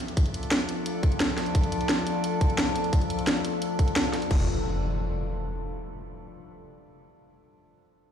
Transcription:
Already playing: synth drone F3 D4 F4 A4, ambient pad F4 A4 D5 A5
0.08 closed hi-hat
0.17 kick, closed hi-hat
0.26 closed hi-hat
0.34 closed hi-hat
0.43 closed hi-hat
0.51 snare, closed hi-hat
0.69 closed hi-hat
0.86 closed hi-hat
1.03 kick, closed hi-hat
1.12 closed hi-hat
1.20 snare, closed hi-hat
1.38 snare, closed hi-hat
1.46 closed hi-hat
1.55 kick, closed hi-hat
1.63 closed hi-hat
1.72 closed hi-hat
1.81 closed hi-hat
1.89 snare, closed hi-hat
2.07 closed hi-hat
2.24 closed hi-hat
2.41 kick, closed hi-hat
2.50 closed hi-hat
2.58 snare, closed hi-hat
2.76 closed hi-hat
2.84 closed hi-hat
2.93 kick, closed hi-hat
3.01 closed hi-hat
3.10 closed hi-hat
3.19 closed hi-hat
3.27 snare, closed hi-hat
3.45 closed hi-hat
3.62 closed hi-hat
3.79 kick, closed hi-hat
3.88 closed hi-hat
3.96 snare, closed hi-hat
4.13 snare, closed hi-hat
4.22 closed hi-hat
4.31 detuned saw bass E1, kick, crash, impact

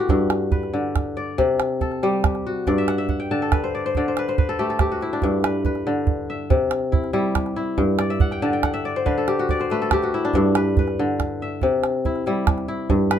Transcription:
Already playing: kora D3 A3 E4 G4 A4 B4
0.00 kora F#4
0.09 kora G2, calabash thump
0.30 calabash click
0.52 kora B4, calabash thump
0.63 calabash click
0.73 kora D3
0.96 calabash thump, calabash click
1.17 kora D5
1.38 kora C3, calabash thump
1.60 calabash click
1.81 kora A4, calabash thump
1.92 calabash click
2.03 kora G3 G4, calabash click
2.24 calabash thump, calabash click
2.35 calabash click
2.46 kora F#4
2.67 kora G2 D5, calabash thump
2.78 kora E5
2.88 kora F#5, calabash click
2.98 kora E5
3.09 kora F#5, calabash thump
3.20 kora G5
3.31 kora D3 A5
3.42 kora A4
3.52 kora B4, calabash thump, calabash click
3.64 kora C5
3.75 kora D5
3.86 kora C5
3.95 kora D3 D5, calabash thump
4.08 kora C5
4.17 kora B4, calabash click
4.28 kora C5, calabash click
4.38 kora B4, calabash thump
4.49 kora A4
4.59 kora A3 G4
4.70 kora A4, calabash click
4.79 kora G4, calabash thump, calabash click
4.92 kora F#4
5.01 kora E4, calabash click
5.13 kora D4
5.22 kora G2, calabash thump
5.44 kora B4, calabash click
5.65 kora B4, calabash thump
5.75 calabash click
5.87 kora D3
6.07 calabash thump
6.30 kora E5
6.50 kora C3, calabash thump
6.71 calabash click
6.92 kora E4, calabash thump
7.04 calabash click
7.13 kora G3 E4, calabash click
7.35 calabash thump, calabash click
7.46 calabash click
7.56 kora E4
7.78 kora G2, calabash thump
7.99 kora D5, calabash click
8.10 kora E5
8.20 kora F#5, calabash thump
8.31 kora G5, calabash click
8.42 kora D3 A5
8.53 kora G5
8.63 kora F#5, calabash thump, calabash click
8.74 kora E5
8.85 kora D5
8.96 kora C5
9.06 kora D3 B4, calabash thump
9.18 kora A4
9.28 kora G4, calabash click
9.39 kora F#4
9.49 kora D5, calabash thump
9.60 kora C5, calabash click
9.70 kora A3 B4, calabash click
9.82 kora A4
9.91 kora G4, calabash thump, calabash click
10.03 kora F#4, calabash click
10.14 kora E4
10.25 kora D4
10.33 kora G2, calabash thump
10.55 kora B4, calabash click
10.77 kora B4, calabash thump
10.88 calabash click
10.99 kora D3
11.20 calabash thump, calabash click
11.42 kora E5
11.62 kora C3, calabash thump
11.84 calabash click
12.05 kora E4, calabash thump
12.16 calabash click
12.26 kora G3 E4, calabash click
12.47 calabash thump, calabash click
12.58 calabash click
12.68 kora E4
12.90 kora G2, calabash thump
13.11 kora B4, calabash click

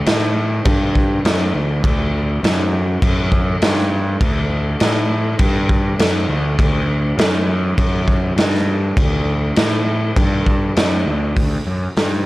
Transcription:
0.06 picked electric bass A2, snare, crash
0.65 picked electric bass G2, kick, crash
0.95 kick
1.25 picked electric bass F#2, snare, crash
1.55 picked electric bass D2
1.84 picked electric bass D2, kick, crash
2.43 picked electric bass F#2, snare, crash
3.02 picked electric bass F#2, kick, crash
3.32 kick
3.62 picked electric bass G2, snare, crash
3.78 snare
4.21 picked electric bass D2, kick, crash
4.80 picked electric bass A2, snare, crash
5.39 picked electric bass G2, kick, crash
5.69 kick
5.99 picked electric bass F#2, snare, crash
6.29 picked electric bass D2
6.59 picked electric bass D2, kick, crash
7.18 picked electric bass F#2, snare, crash
7.78 picked electric bass F#2, kick, crash
8.08 kick
8.36 picked electric bass G2, snare, crash
8.54 snare
8.97 picked electric bass D2, kick, crash
9.56 picked electric bass A2, snare, crash
10.16 picked electric bass G2, kick, crash
10.46 kick
10.77 picked electric bass F#2, snare, crash
11.06 picked electric bass D2
11.37 picked electric bass D2, kick, open hi-hat
11.67 picked electric bass F#2
11.96 picked electric bass G2, snare, open hi-hat

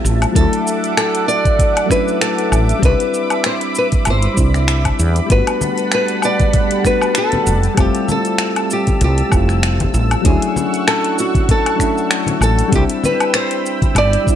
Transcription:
Already playing: synth keys G3 A3 C4 E4 F4, analog synth pad G3 E5 A5
0.04 fretless electric bass A1, shaker
0.22 closed hi-hat, low woodblock, shaker
0.32 fretless electric bass D2, synth keys F#3 A3, analog synth pad A4 E5 F#5 D6, nylon-string guitar A4, kick, closed hi-hat
0.37 synth keys D4 E4, shaker
0.53 closed hi-hat, shaker
0.67 shaker
0.84 closed hi-hat, shaker
0.97 nylon-string guitar A4, finger snap, closed hi-hat, low woodblock, shaker
1.15 closed hi-hat, shaker
1.28 nylon-string guitar D5, shaker
1.45 kick, closed hi-hat, shaker
1.59 kick, closed hi-hat, shaker
1.77 closed hi-hat, low woodblock, shaker
1.86 synth keys F#3 A3 C#4
1.90 synth keys D4 E4, nylon-string guitar B4, finger snap, kick, shaker
2.08 shaker
2.21 nylon-string guitar A4, finger snap, closed hi-hat, shaker
2.39 closed hi-hat, shaker
2.52 fretless electric bass A1, low woodblock, shaker
2.69 closed hi-hat, shaker
2.79 fretless electric bass C2, synth keys G3 C4, analog synth pad B5, kick
2.83 synth keys D4 E4, nylon-string guitar B4, closed hi-hat, shaker
3.00 closed hi-hat, shaker
3.14 shaker
3.30 closed hi-hat, low woodblock, shaker
3.44 nylon-string guitar C5, finger snap, closed hi-hat, shaker
3.61 closed hi-hat, shaker
3.75 nylon-string guitar B4, shaker
3.92 kick, closed hi-hat, shaker
4.05 fretless electric bass G1, closed hi-hat, low woodblock, shaker
4.10 nylon-string guitar C5
4.22 closed hi-hat, shaker
4.34 fretless electric bass C2, synth keys G3 C4, kick, shaker
4.39 synth keys D4 E4
4.54 finger snap, shaker
4.68 finger snap, closed hi-hat, shaker
4.85 kick, closed hi-hat, low woodblock, shaker
4.99 fretless electric bass E2, shaker
5.16 closed hi-hat, shaker
5.26 fretless electric bass G1, synth keys G3 A3 B3, kick, closed hi-hat
5.31 analog synth pad G3 F#5 A5 B5, synth keys D4 F#4, nylon-string guitar B4, shaker
5.47 closed hi-hat, low woodblock, shaker
5.61 high conga, shaker
5.78 closed hi-hat, shaker
5.92 nylon-string guitar B4, finger snap, closed hi-hat, shaker
6.08 closed hi-hat, shaker
6.22 nylon-string guitar D5, low woodblock, shaker
6.40 kick, closed hi-hat, high conga, shaker
6.53 kick, closed hi-hat, low conga, shaker
6.71 closed hi-hat, shaker
6.83 synth keys G3 A3 B3 D4 F#4, nylon-string guitar B4, finger snap, kick, shaker
7.01 low woodblock, shaker
7.15 nylon-string guitar A4, finger snap, closed hi-hat, shaker
7.32 closed hi-hat, high conga, low conga, shaker
7.47 fretless electric bass F1, analog synth pad E6, shaker
7.63 closed hi-hat, shaker
7.74 fretless electric bass F1, synth keys G3 A3 C4, kick, closed hi-hat, low woodblock, shaker
7.79 synth keys E4 F4, nylon-string guitar G4
7.95 closed hi-hat, shaker
8.08 nylon-string guitar A4, high conga, shaker
8.25 closed hi-hat, shaker
8.38 finger snap, closed hi-hat, shaker
8.56 closed hi-hat, low woodblock, shaker
8.71 nylon-string guitar G4, shaker
8.87 kick, closed hi-hat, high conga, shaker
9.01 fretless electric bass C2, nylon-string guitar G4, closed hi-hat, low conga, shaker
9.18 closed hi-hat, shaker
9.29 fretless electric bass F1, synth keys G3 A3 C4, kick, low woodblock, shaker
9.34 synth keys E4 F4
9.49 finger snap, shaker
9.63 finger snap, closed hi-hat, shaker
9.80 kick, closed hi-hat, high conga, low conga, shaker
9.94 fretless electric bass A1, shaker
10.11 closed hi-hat, low woodblock, shaker
10.22 fretless electric bass D2, synth keys F#3 A3 C#4, analog synth pad F#5 C#6, kick, closed hi-hat, shaker
10.26 synth keys D4 E4, nylon-string guitar G#4
10.42 closed hi-hat, shaker
10.56 high conga, shaker
10.74 closed hi-hat, shaker
10.88 nylon-string guitar A4, finger snap, closed hi-hat, low woodblock, shaker
11.04 closed hi-hat, shaker
11.19 nylon-string guitar F#4, shaker
11.35 kick, closed hi-hat, high conga, shaker
11.49 nylon-string guitar A4, kick, closed hi-hat, low conga, shaker
11.66 closed hi-hat, low woodblock, shaker
11.75 synth keys F#3 A3 C#4
11.80 synth keys D4 E4, finger snap, kick, shaker
11.98 shaker
12.11 finger snap, closed hi-hat, shaker
12.26 closed hi-hat, high conga, low conga, shaker
12.41 fretless electric bass A1, nylon-string guitar A4, low woodblock, shaker
12.59 closed hi-hat, shaker
12.68 synth keys G3 C4
12.72 fretless electric bass C2, synth keys D4 E4, nylon-string guitar G4, analog synth pad G5 B5 E6, kick, closed hi-hat, shaker
12.90 closed hi-hat, shaker
13.04 nylon-string guitar B4, high conga, shaker
13.20 closed hi-hat, low woodblock, shaker
13.34 nylon-string guitar C5, finger snap, closed hi-hat, shaker
13.51 closed hi-hat, shaker
13.66 shaker
13.82 kick, closed hi-hat, high conga, shaker
13.95 fretless electric bass G1, nylon-string guitar D5, closed hi-hat, low conga, low woodblock, shaker
14.13 closed hi-hat, shaker
14.24 synth keys G3 C4, kick, shaker
14.29 synth keys D4 E4

